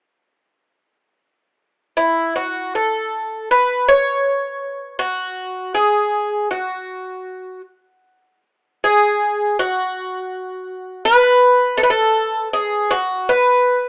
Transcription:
1.97 E4
2.36 F#4
2.75 A4
3.51 B4
3.88 C#5
4.99 F#4
5.75 G#4
6.51 F#4
8.84 G#4
9.59 F#4
11.05 B4
11.77 A4
11.83 B4
11.90 A4
12.53 G#4
12.91 F#4
13.29 B4

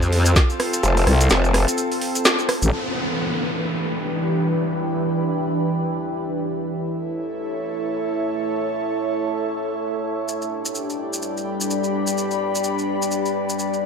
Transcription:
Already playing: F2 C4 F4 G4 A4
0.02 maracas
0.12 open hi-hat
0.25 closed hi-hat, maracas
0.36 kick, snare, closed hi-hat, maracas
0.50 maracas
0.60 cross-stick, open hi-hat
0.73 closed hi-hat, maracas
0.83 F1, closed hi-hat, maracas
0.97 open hi-hat, maracas
1.07 C2, cross-stick, open hi-hat
1.21 closed hi-hat, maracas
1.30 F1, snare, closed hi-hat, maracas
1.44 maracas
1.54 cross-stick, open hi-hat
1.68 closed hi-hat, maracas
1.78 closed hi-hat, maracas
1.92 open hi-hat, maracas
2.01 open hi-hat
2.15 closed hi-hat, maracas
2.25 snare, closed hi-hat, maracas
2.39 maracas
2.49 cross-stick, open hi-hat
2.62 A1, closed hi-hat, maracas
2.72 E3 E4 G4 B4, downlifter
2.95 B4
3.06 D4
3.40 G4
6.50 A3 E4 A4 C#5 E5
6.78 A4
7.07 C#5
10.28 G3 D4 G4 B4 D5, maracas
10.42 maracas
10.49 G4
10.65 maracas
10.75 maracas
10.90 maracas
11.13 maracas
11.22 maracas
11.34 B5, maracas
11.61 maracas
11.70 maracas
11.84 maracas
12.07 maracas
12.18 maracas
12.31 maracas
12.55 maracas
12.64 maracas
12.79 maracas
13.02 maracas
13.11 maracas
13.26 maracas
13.49 maracas
13.59 maracas
13.74 maracas

